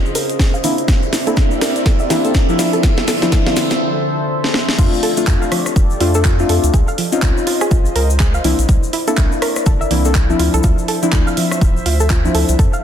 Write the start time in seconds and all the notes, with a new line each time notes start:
Already playing: C#3 C4 C#4 D#4 F4 G#4 C5 D#5 F5
0.06 shaker
0.15 A#4, open hi-hat, shaker
0.29 closed hi-hat, shaker
0.39 G#4, kick, snare, open hi-hat, shaker
0.54 F5, shaker
0.64 E3 A#3 C4 D4 E4 G4 A#4 D5 E5, open hi-hat, shaker
0.78 closed hi-hat, shaker
0.87 D5, kick, snare, closed hi-hat, shaker
1.02 A#4, shaker
1.13 E4, snare, open hi-hat, shaker
1.27 A#3 C4 D4 E4 A4, closed hi-hat, shaker
1.37 E4, kick, snare, closed hi-hat, shaker
1.51 E5, shaker
1.61 A#4, snare, open hi-hat, shaker
1.76 closed hi-hat, shaker
1.86 A4, kick, snare, closed hi-hat, shaker
1.99 E5, shaker
2.10 E3 A#3 C4 D4 E4, snare, open hi-hat, shaker
2.24 A#3 C4 D4 A4, closed hi-hat, shaker
2.34 kick, snare, closed hi-hat, shaker
2.49 F3 C4 D4 E4, shaker
2.59 D3 F3 F4 A4 C5, snare, open hi-hat, shaker
2.73 A4, closed hi-hat, shaker
2.83 F4, kick, snare, closed hi-hat, shaker
2.97 snare, shaker
3.08 A4, snare, open hi-hat, shaker
3.22 F3 C4 D4 E4, snare, shaker
3.32 A4, kick, snare, closed hi-hat, shaker
3.46 F5, snare, shaker
3.56 F3, snare, open hi-hat, shaker
3.71 snare, closed hi-hat, shaker
4.44 snare
4.54 snare
4.69 snare
4.78 F2 A3 C4 D4 F4 G4 A4 D5, kick, closed hi-hat, crash, shaker
4.93 shaker
5.03 A4, open hi-hat
5.17 A3 C4 D4 F4, closed hi-hat, shaker
5.27 F2 A4, kick, clap, closed hi-hat, shaker
5.42 F5, shaker
5.52 F3, cross-stick, open hi-hat
5.66 cross-stick, shaker
5.76 F1, kick, closed hi-hat, shaker
5.90 shaker
6.00 F2 A3 C4 D4 F4, open hi-hat
6.14 A3 C4 D4 A4, shaker
6.25 F4, kick, clap, closed hi-hat, shaker
6.39 A3 C4 D4 F4, shaker
6.49 F2 A4, open hi-hat
6.64 D2, closed hi-hat, shaker
6.74 C#2 F4 G#4 C5 D#5, kick, closed hi-hat, shaker
6.88 F5, shaker
6.98 F3, open hi-hat
7.12 C4 C#4 D#4 F4, closed hi-hat, shaker
7.22 C#2, kick, clap, closed hi-hat, shaker
7.37 shaker
7.47 F4, open hi-hat
7.61 G#4, cross-stick, shaker
7.71 G#1 F4, kick, closed hi-hat, shaker
7.85 shaker
7.96 C#2 A#4, open hi-hat
8.10 shaker
8.20 G#4, kick, clap, closed hi-hat, shaker
8.34 F5, shaker
8.44 C2 E3 A#3 C4 D4 E4 A#4 D5, open hi-hat
8.59 A#1, closed hi-hat, shaker
8.69 C2, kick, closed hi-hat, shaker
8.83 shaker
8.93 E4, open hi-hat
9.07 A#3 C4 D4 E4 A4, closed hi-hat, shaker
9.17 C2 E4, kick, clap, closed hi-hat, shaker
9.32 shaker
9.42 A#4, cross-stick, open hi-hat
9.56 cross-stick, shaker
9.66 G1 A4, kick, closed hi-hat, shaker
9.81 E5, shaker
9.91 C2 E3 A#3 C4 D4 E4, open hi-hat
10.05 A#3 C4 D4 A4, shaker
10.15 kick, clap, closed hi-hat, shaker
10.29 F3 C4 D4 E4, shaker
10.39 D2 F3 F4 C5 E5, open hi-hat
10.54 C2 A4, closed hi-hat, shaker
10.63 D2 F4, kick, closed hi-hat, shaker
10.78 shaker
10.88 A4, open hi-hat
11.02 F3 C4 D4 E4, closed hi-hat, shaker
11.12 D2 A4, kick, clap, closed hi-hat, shaker
11.27 F5, shaker
11.37 F3, open hi-hat
11.51 cross-stick, shaker
11.61 D1, kick, closed hi-hat, shaker
11.77 shaker
11.86 D2 F4, open hi-hat
12.00 A4, shaker
12.10 F4, kick, clap, closed hi-hat, shaker
12.24 F3 C4 D4 E4, shaker
12.35 D2 A4, open hi-hat
12.49 C2, closed hi-hat, shaker
12.59 F2 G4 A4 D5, kick, closed hi-hat, shaker
12.73 F5, shaker